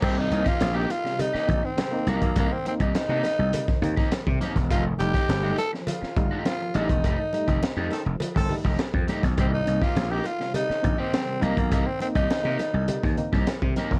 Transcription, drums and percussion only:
0.02 kick, crash, cowbell, muted conga
0.32 closed hi-hat, muted conga
0.46 kick, snare, closed hi-hat
0.60 snare, closed hi-hat, cowbell, high conga
0.90 closed hi-hat, cowbell, muted conga
1.06 snare
1.19 closed hi-hat, cowbell, muted conga, low conga
1.35 snare
1.49 kick, closed hi-hat, low conga
1.78 snare, closed hi-hat, cowbell, high conga
2.07 closed hi-hat, high conga
2.22 kick, closed hi-hat
2.36 kick, closed hi-hat, cowbell, muted conga
2.66 closed hi-hat, muted conga
2.80 kick, closed hi-hat
2.95 snare, closed hi-hat, cowbell, high conga
3.24 snare, closed hi-hat, cowbell, muted conga
3.53 closed hi-hat, cowbell, muted conga, low conga
3.68 kick, snare
3.83 closed hi-hat, low conga
3.97 kick, snare
4.12 snare, closed hi-hat, cowbell, high conga
4.27 kick
4.41 snare, closed hi-hat, high conga
4.56 kick, snare, closed hi-hat
4.70 kick, closed hi-hat, cowbell, muted conga
5.00 closed hi-hat, muted conga
5.14 kick, snare, closed hi-hat
5.29 snare, closed hi-hat, cowbell, high conga
5.58 closed hi-hat, cowbell, muted conga
5.74 snare
5.87 closed hi-hat, cowbell, muted conga, low conga
6.03 snare
6.17 kick, closed hi-hat, low conga
6.45 snare, closed hi-hat, cowbell, high conga
6.74 closed hi-hat, high conga
6.89 kick, closed hi-hat
7.04 kick, closed hi-hat, cowbell, muted conga
7.33 closed hi-hat, muted conga
7.48 kick, closed hi-hat
7.63 snare, closed hi-hat, cowbell, high conga
7.91 snare, closed hi-hat, cowbell, muted conga
8.20 closed hi-hat, cowbell, muted conga, low conga
8.36 kick, snare
8.49 open hi-hat, cowbell, low conga
8.65 kick, snare
8.79 snare, closed hi-hat, cowbell, high conga
8.94 kick
9.08 snare, closed hi-hat, high conga
9.23 kick, snare, closed hi-hat
9.37 kick, closed hi-hat, cowbell
9.67 closed hi-hat, muted conga
9.82 kick, snare
9.96 snare, closed hi-hat, cowbell, high conga
10.24 closed hi-hat, cowbell, muted conga
10.41 snare
10.54 closed hi-hat, cowbell, muted conga, low conga
10.71 snare
10.84 kick, closed hi-hat, low conga
11.13 snare, closed hi-hat, cowbell, high conga
11.42 closed hi-hat, high conga
11.57 kick, closed hi-hat
11.71 kick, closed hi-hat, cowbell, muted conga
12.00 closed hi-hat, muted conga
12.15 kick, closed hi-hat
12.30 snare, closed hi-hat, cowbell, high conga
12.59 snare, closed hi-hat, cowbell, muted conga
12.88 closed hi-hat, cowbell, muted conga, low conga
13.04 kick, snare
13.17 closed hi-hat, low conga
13.33 kick, snare
13.47 snare, closed hi-hat, cowbell, high conga
13.62 kick
13.76 snare, closed hi-hat, high conga
13.91 kick, snare

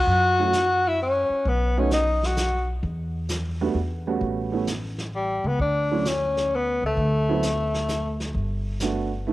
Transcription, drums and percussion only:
0.08 brush sweep
0.53 snare, hi-hat pedal
1.45 brush sweep, kick
1.91 snare, hi-hat pedal
2.23 snare
2.37 snare, hi-hat pedal
2.83 brush sweep, kick
3.29 snare, hi-hat pedal
4.21 brush sweep, kick
4.67 snare, hi-hat pedal
4.98 snare
5.60 brush sweep, kick
6.05 snare, hi-hat pedal
6.37 snare
6.97 brush sweep, kick
7.43 snare, hi-hat pedal
7.74 snare
7.88 snare, hi-hat pedal
8.20 snare
8.34 brush sweep, kick
8.80 snare, hi-hat pedal

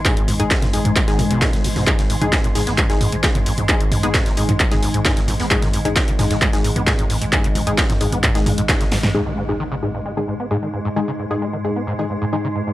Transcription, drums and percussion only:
0.05 kick, clap, closed hi-hat, mid tom
0.17 closed hi-hat
0.28 closed hi-hat, mid tom, open hi-hat
0.40 closed hi-hat
0.51 kick, snare, clap, closed hi-hat
0.62 snare, closed hi-hat, mid tom
0.73 closed hi-hat, open hi-hat
0.85 closed hi-hat, mid tom
0.96 kick, clap, closed hi-hat
1.08 snare, closed hi-hat
1.19 closed hi-hat, mid tom, open hi-hat
1.31 closed hi-hat
1.41 kick, snare, clap, closed hi-hat, mid tom
1.53 snare, closed hi-hat
1.64 snare, closed hi-hat, open hi-hat
1.76 snare, mid tom, open hi-hat
1.87 kick, clap, closed hi-hat, mid tom
1.99 snare, closed hi-hat
2.10 closed hi-hat, open hi-hat
2.22 closed hi-hat, mid tom
2.33 kick, snare, clap, closed hi-hat
2.44 closed hi-hat, mid tom
2.55 snare, closed hi-hat, open hi-hat
2.67 snare, closed hi-hat
2.78 kick, clap, closed hi-hat, mid tom
2.90 snare, closed hi-hat
3.01 closed hi-hat, mid tom, open hi-hat
3.12 closed hi-hat
3.23 kick, snare, clap, closed hi-hat
3.35 closed hi-hat, mid tom
3.46 open hi-hat
3.57 closed hi-hat, mid tom
3.69 kick, clap, closed hi-hat
3.81 closed hi-hat
3.92 closed hi-hat, mid tom, open hi-hat
4.03 closed hi-hat
4.14 kick, snare, clap, closed hi-hat, mid tom
4.26 snare, closed hi-hat
4.37 closed hi-hat, open hi-hat
4.49 closed hi-hat, mid tom
4.60 kick, clap, closed hi-hat
4.71 snare, closed hi-hat, mid tom
4.83 closed hi-hat, open hi-hat
4.94 closed hi-hat
5.05 kick, snare, clap, closed hi-hat, mid tom
5.17 snare, closed hi-hat
5.28 snare, closed hi-hat, mid tom, open hi-hat
5.40 snare, open hi-hat
5.51 kick, clap, closed hi-hat
5.62 snare, closed hi-hat, mid tom
5.73 closed hi-hat, open hi-hat
5.85 closed hi-hat, mid tom
5.96 kick, snare, clap, closed hi-hat
6.08 closed hi-hat
6.19 snare, closed hi-hat, mid tom, open hi-hat
6.31 snare, closed hi-hat
6.42 kick, clap, closed hi-hat, mid tom
6.53 snare, closed hi-hat
6.64 closed hi-hat, open hi-hat
6.76 closed hi-hat, mid tom
6.87 kick, snare, clap, closed hi-hat
6.99 closed hi-hat, mid tom
7.10 open hi-hat
7.21 closed hi-hat
7.33 kick, clap, closed hi-hat, mid tom
7.44 closed hi-hat
7.55 closed hi-hat, mid tom, open hi-hat
7.67 closed hi-hat
7.78 kick, snare, clap, closed hi-hat
7.90 snare, closed hi-hat, mid tom
8.01 closed hi-hat, open hi-hat
8.12 closed hi-hat, mid tom
8.23 kick, clap, closed hi-hat
8.35 snare, closed hi-hat
8.46 closed hi-hat, mid tom, open hi-hat
8.58 closed hi-hat
8.69 kick, snare, clap, closed hi-hat, mid tom
8.81 snare, closed hi-hat
8.91 snare, closed hi-hat, open hi-hat
9.03 snare, mid tom, open hi-hat

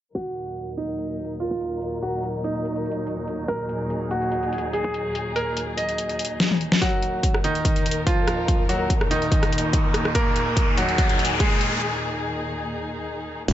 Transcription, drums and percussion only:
0.15 kick, closed hi-hat
0.36 closed hi-hat
0.57 closed hi-hat
0.78 closed hi-hat
0.89 closed hi-hat
0.98 closed hi-hat
1.09 closed hi-hat
1.19 closed hi-hat
1.25 closed hi-hat
1.40 closed hi-hat
1.51 kick
1.61 closed hi-hat
1.82 closed hi-hat
2.03 closed hi-hat
2.23 closed hi-hat
2.44 closed hi-hat
2.55 closed hi-hat
2.65 closed hi-hat
2.76 closed hi-hat
2.86 closed hi-hat
2.92 closed hi-hat
3.07 closed hi-hat
3.28 closed hi-hat
3.48 kick, closed hi-hat
3.69 closed hi-hat
3.90 closed hi-hat
4.11 closed hi-hat
4.22 closed hi-hat
4.32 closed hi-hat
4.43 closed hi-hat
4.53 closed hi-hat
4.58 closed hi-hat
4.73 closed hi-hat
4.84 kick
4.94 closed hi-hat
5.15 closed hi-hat
5.36 closed hi-hat
5.57 closed hi-hat
5.78 closed hi-hat
5.89 closed hi-hat
5.98 closed hi-hat
6.09 closed hi-hat
6.19 closed hi-hat
6.25 closed hi-hat
6.40 snare, closed hi-hat
6.51 high tom
6.61 closed hi-hat
6.72 snare
6.82 kick, closed hi-hat
7.03 closed hi-hat
7.23 kick, closed hi-hat
7.34 cross-stick
7.44 closed hi-hat
7.55 closed hi-hat
7.65 kick, closed hi-hat
7.76 closed hi-hat
7.86 closed hi-hat
7.91 closed hi-hat
8.07 kick, closed hi-hat
8.28 cross-stick, closed hi-hat
8.48 kick, closed hi-hat
8.69 closed hi-hat
8.90 kick, closed hi-hat
9.01 cross-stick
9.11 closed hi-hat
9.22 closed hi-hat
9.32 kick, closed hi-hat
9.43 cross-stick, closed hi-hat
9.53 closed hi-hat
9.58 closed hi-hat
9.73 kick, closed hi-hat
9.94 cross-stick, closed hi-hat
10.05 cross-stick
10.15 kick, closed hi-hat
10.36 closed hi-hat
10.57 kick, closed hi-hat
10.78 closed hi-hat
10.89 closed hi-hat
10.98 kick, closed hi-hat
11.09 closed hi-hat
11.19 closed hi-hat
11.25 closed hi-hat
11.40 kick, closed hi-hat
11.61 closed hi-hat
13.48 kick, closed hi-hat, crash

